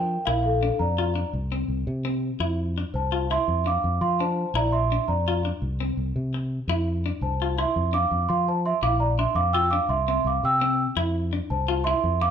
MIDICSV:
0, 0, Header, 1, 5, 480
1, 0, Start_track
1, 0, Key_signature, -1, "major"
1, 0, Tempo, 356506
1, 364, Time_signature, 12, 3, 24, 8
1, 16567, End_track
2, 0, Start_track
2, 0, Title_t, "Celesta"
2, 0, Program_c, 0, 8
2, 0, Note_on_c, 0, 70, 68
2, 0, Note_on_c, 0, 79, 77
2, 311, Note_off_c, 0, 79, 0
2, 331, Note_off_c, 0, 70, 0
2, 342, Note_on_c, 0, 77, 80
2, 369, Note_on_c, 0, 70, 68
2, 563, Note_off_c, 0, 77, 0
2, 580, Note_on_c, 0, 77, 80
2, 590, Note_off_c, 0, 70, 0
2, 619, Note_on_c, 0, 69, 62
2, 1037, Note_off_c, 0, 77, 0
2, 1058, Note_off_c, 0, 69, 0
2, 1067, Note_on_c, 0, 82, 75
2, 1096, Note_on_c, 0, 74, 53
2, 1744, Note_off_c, 0, 82, 0
2, 1760, Note_off_c, 0, 74, 0
2, 3956, Note_on_c, 0, 72, 64
2, 3980, Note_on_c, 0, 81, 70
2, 4405, Note_off_c, 0, 72, 0
2, 4450, Note_on_c, 0, 76, 77
2, 4465, Note_off_c, 0, 81, 0
2, 4467, Note_on_c, 0, 84, 97
2, 4893, Note_off_c, 0, 76, 0
2, 4938, Note_on_c, 0, 77, 73
2, 4945, Note_on_c, 0, 86, 90
2, 4949, Note_off_c, 0, 84, 0
2, 5377, Note_off_c, 0, 77, 0
2, 5381, Note_off_c, 0, 86, 0
2, 5404, Note_on_c, 0, 84, 97
2, 5410, Note_on_c, 0, 77, 77
2, 5630, Note_off_c, 0, 77, 0
2, 5650, Note_off_c, 0, 84, 0
2, 5653, Note_on_c, 0, 81, 74
2, 5661, Note_on_c, 0, 72, 64
2, 6099, Note_off_c, 0, 72, 0
2, 6132, Note_on_c, 0, 82, 84
2, 6142, Note_off_c, 0, 81, 0
2, 6142, Note_on_c, 0, 74, 68
2, 6350, Note_off_c, 0, 82, 0
2, 6356, Note_off_c, 0, 74, 0
2, 6361, Note_on_c, 0, 84, 86
2, 6373, Note_on_c, 0, 76, 73
2, 6814, Note_off_c, 0, 76, 0
2, 6839, Note_on_c, 0, 82, 63
2, 6849, Note_on_c, 0, 74, 54
2, 6855, Note_off_c, 0, 84, 0
2, 7342, Note_off_c, 0, 82, 0
2, 7348, Note_off_c, 0, 74, 0
2, 9727, Note_on_c, 0, 81, 66
2, 9731, Note_on_c, 0, 72, 52
2, 10172, Note_off_c, 0, 72, 0
2, 10217, Note_on_c, 0, 84, 84
2, 10218, Note_off_c, 0, 81, 0
2, 10230, Note_on_c, 0, 76, 62
2, 10662, Note_off_c, 0, 76, 0
2, 10690, Note_on_c, 0, 86, 93
2, 10703, Note_off_c, 0, 84, 0
2, 10706, Note_on_c, 0, 77, 71
2, 11140, Note_off_c, 0, 77, 0
2, 11158, Note_on_c, 0, 84, 92
2, 11173, Note_on_c, 0, 77, 69
2, 11179, Note_off_c, 0, 86, 0
2, 11382, Note_off_c, 0, 84, 0
2, 11390, Note_off_c, 0, 77, 0
2, 11421, Note_on_c, 0, 72, 59
2, 11423, Note_on_c, 0, 81, 77
2, 11525, Note_off_c, 0, 72, 0
2, 11526, Note_off_c, 0, 81, 0
2, 11654, Note_on_c, 0, 84, 85
2, 11663, Note_on_c, 0, 76, 70
2, 11759, Note_off_c, 0, 84, 0
2, 11766, Note_off_c, 0, 76, 0
2, 11883, Note_on_c, 0, 77, 77
2, 11886, Note_on_c, 0, 86, 92
2, 11990, Note_off_c, 0, 77, 0
2, 11993, Note_off_c, 0, 86, 0
2, 12115, Note_on_c, 0, 82, 80
2, 12119, Note_on_c, 0, 74, 64
2, 12224, Note_off_c, 0, 82, 0
2, 12227, Note_off_c, 0, 74, 0
2, 12369, Note_on_c, 0, 84, 85
2, 12374, Note_on_c, 0, 76, 63
2, 12591, Note_off_c, 0, 76, 0
2, 12597, Note_on_c, 0, 86, 94
2, 12598, Note_on_c, 0, 77, 76
2, 12611, Note_off_c, 0, 84, 0
2, 12822, Note_off_c, 0, 77, 0
2, 12832, Note_on_c, 0, 79, 80
2, 12837, Note_on_c, 0, 88, 90
2, 12845, Note_off_c, 0, 86, 0
2, 13059, Note_off_c, 0, 79, 0
2, 13061, Note_off_c, 0, 88, 0
2, 13068, Note_on_c, 0, 86, 93
2, 13078, Note_on_c, 0, 77, 73
2, 13302, Note_off_c, 0, 77, 0
2, 13320, Note_on_c, 0, 84, 83
2, 13321, Note_off_c, 0, 86, 0
2, 13321, Note_on_c, 0, 76, 71
2, 13543, Note_off_c, 0, 84, 0
2, 13544, Note_off_c, 0, 76, 0
2, 13575, Note_on_c, 0, 76, 62
2, 13580, Note_on_c, 0, 84, 85
2, 13791, Note_off_c, 0, 76, 0
2, 13816, Note_off_c, 0, 84, 0
2, 13825, Note_on_c, 0, 77, 61
2, 13828, Note_on_c, 0, 86, 79
2, 14036, Note_off_c, 0, 77, 0
2, 14038, Note_off_c, 0, 86, 0
2, 14068, Note_on_c, 0, 79, 72
2, 14068, Note_on_c, 0, 88, 94
2, 14557, Note_off_c, 0, 79, 0
2, 14557, Note_off_c, 0, 88, 0
2, 15487, Note_on_c, 0, 81, 81
2, 15498, Note_on_c, 0, 72, 55
2, 15930, Note_off_c, 0, 81, 0
2, 15936, Note_off_c, 0, 72, 0
2, 15944, Note_on_c, 0, 84, 100
2, 15954, Note_on_c, 0, 76, 76
2, 16403, Note_off_c, 0, 76, 0
2, 16445, Note_on_c, 0, 77, 78
2, 16447, Note_off_c, 0, 84, 0
2, 16449, Note_on_c, 0, 86, 105
2, 16567, Note_off_c, 0, 77, 0
2, 16567, Note_off_c, 0, 86, 0
2, 16567, End_track
3, 0, Start_track
3, 0, Title_t, "Clean electric guitar"
3, 0, Program_c, 1, 27
3, 0, Note_on_c, 1, 62, 74
3, 257, Note_off_c, 1, 62, 0
3, 361, Note_on_c, 1, 64, 90
3, 740, Note_off_c, 1, 64, 0
3, 843, Note_on_c, 1, 62, 76
3, 1221, Note_off_c, 1, 62, 0
3, 1325, Note_on_c, 1, 65, 76
3, 1513, Note_off_c, 1, 65, 0
3, 1555, Note_on_c, 1, 62, 67
3, 1936, Note_off_c, 1, 62, 0
3, 2044, Note_on_c, 1, 60, 73
3, 2422, Note_off_c, 1, 60, 0
3, 2758, Note_on_c, 1, 60, 80
3, 3138, Note_off_c, 1, 60, 0
3, 3236, Note_on_c, 1, 64, 86
3, 3617, Note_off_c, 1, 64, 0
3, 3737, Note_on_c, 1, 62, 71
3, 4109, Note_off_c, 1, 62, 0
3, 4202, Note_on_c, 1, 65, 76
3, 4391, Note_off_c, 1, 65, 0
3, 4455, Note_on_c, 1, 64, 73
3, 4828, Note_off_c, 1, 64, 0
3, 4927, Note_on_c, 1, 62, 67
3, 5303, Note_off_c, 1, 62, 0
3, 5661, Note_on_c, 1, 62, 75
3, 6031, Note_off_c, 1, 62, 0
3, 6130, Note_on_c, 1, 64, 95
3, 6505, Note_off_c, 1, 64, 0
3, 6623, Note_on_c, 1, 62, 71
3, 6993, Note_off_c, 1, 62, 0
3, 7105, Note_on_c, 1, 65, 78
3, 7285, Note_off_c, 1, 65, 0
3, 7337, Note_on_c, 1, 62, 65
3, 7709, Note_off_c, 1, 62, 0
3, 7815, Note_on_c, 1, 60, 72
3, 8187, Note_off_c, 1, 60, 0
3, 9013, Note_on_c, 1, 64, 95
3, 9386, Note_off_c, 1, 64, 0
3, 9501, Note_on_c, 1, 62, 69
3, 9871, Note_off_c, 1, 62, 0
3, 9987, Note_on_c, 1, 65, 67
3, 10165, Note_off_c, 1, 65, 0
3, 10211, Note_on_c, 1, 64, 73
3, 10585, Note_off_c, 1, 64, 0
3, 10677, Note_on_c, 1, 62, 72
3, 11056, Note_off_c, 1, 62, 0
3, 11886, Note_on_c, 1, 64, 80
3, 12262, Note_off_c, 1, 64, 0
3, 12372, Note_on_c, 1, 62, 79
3, 12745, Note_off_c, 1, 62, 0
3, 12851, Note_on_c, 1, 65, 75
3, 13035, Note_off_c, 1, 65, 0
3, 13098, Note_on_c, 1, 62, 71
3, 13468, Note_off_c, 1, 62, 0
3, 13573, Note_on_c, 1, 60, 74
3, 13946, Note_off_c, 1, 60, 0
3, 14291, Note_on_c, 1, 60, 84
3, 14665, Note_off_c, 1, 60, 0
3, 14765, Note_on_c, 1, 64, 92
3, 15141, Note_off_c, 1, 64, 0
3, 15251, Note_on_c, 1, 62, 78
3, 15625, Note_off_c, 1, 62, 0
3, 15731, Note_on_c, 1, 65, 82
3, 15916, Note_off_c, 1, 65, 0
3, 15980, Note_on_c, 1, 64, 75
3, 16351, Note_off_c, 1, 64, 0
3, 16567, End_track
4, 0, Start_track
4, 0, Title_t, "Fingered electric bass"
4, 0, Program_c, 2, 33
4, 0, Note_on_c, 2, 53, 93
4, 224, Note_off_c, 2, 53, 0
4, 364, Note_on_c, 2, 34, 82
4, 940, Note_off_c, 2, 34, 0
4, 1071, Note_on_c, 2, 41, 85
4, 1652, Note_off_c, 2, 41, 0
4, 1795, Note_on_c, 2, 36, 81
4, 2182, Note_off_c, 2, 36, 0
4, 2264, Note_on_c, 2, 36, 78
4, 2464, Note_off_c, 2, 36, 0
4, 2519, Note_on_c, 2, 48, 103
4, 3096, Note_off_c, 2, 48, 0
4, 3229, Note_on_c, 2, 41, 82
4, 3810, Note_off_c, 2, 41, 0
4, 3955, Note_on_c, 2, 36, 81
4, 4533, Note_off_c, 2, 36, 0
4, 4682, Note_on_c, 2, 41, 85
4, 5066, Note_off_c, 2, 41, 0
4, 5169, Note_on_c, 2, 41, 84
4, 5358, Note_off_c, 2, 41, 0
4, 5399, Note_on_c, 2, 53, 93
4, 5976, Note_off_c, 2, 53, 0
4, 6108, Note_on_c, 2, 34, 83
4, 6689, Note_off_c, 2, 34, 0
4, 6841, Note_on_c, 2, 41, 81
4, 7417, Note_off_c, 2, 41, 0
4, 7563, Note_on_c, 2, 36, 85
4, 7946, Note_off_c, 2, 36, 0
4, 8039, Note_on_c, 2, 36, 76
4, 8232, Note_off_c, 2, 36, 0
4, 8290, Note_on_c, 2, 48, 93
4, 8862, Note_off_c, 2, 48, 0
4, 8987, Note_on_c, 2, 41, 81
4, 9568, Note_off_c, 2, 41, 0
4, 9713, Note_on_c, 2, 36, 87
4, 10291, Note_off_c, 2, 36, 0
4, 10446, Note_on_c, 2, 41, 80
4, 10828, Note_off_c, 2, 41, 0
4, 10924, Note_on_c, 2, 41, 79
4, 11114, Note_off_c, 2, 41, 0
4, 11170, Note_on_c, 2, 53, 106
4, 11742, Note_off_c, 2, 53, 0
4, 11879, Note_on_c, 2, 34, 91
4, 12455, Note_off_c, 2, 34, 0
4, 12585, Note_on_c, 2, 41, 81
4, 13166, Note_off_c, 2, 41, 0
4, 13310, Note_on_c, 2, 36, 80
4, 13698, Note_off_c, 2, 36, 0
4, 13794, Note_on_c, 2, 36, 83
4, 13988, Note_off_c, 2, 36, 0
4, 14049, Note_on_c, 2, 48, 99
4, 14621, Note_off_c, 2, 48, 0
4, 14760, Note_on_c, 2, 41, 86
4, 15336, Note_off_c, 2, 41, 0
4, 15487, Note_on_c, 2, 36, 85
4, 16060, Note_off_c, 2, 36, 0
4, 16205, Note_on_c, 2, 41, 82
4, 16567, Note_off_c, 2, 41, 0
4, 16567, End_track
5, 0, Start_track
5, 0, Title_t, "Muted clean electric guitar strokes"
5, 8541, Note_on_c, 9, 29, 71
5, 8676, Note_off_c, 9, 29, 0
5, 16445, Note_on_c, 9, 29, 75
5, 16567, Note_off_c, 9, 29, 0
5, 16567, End_track
0, 0, End_of_file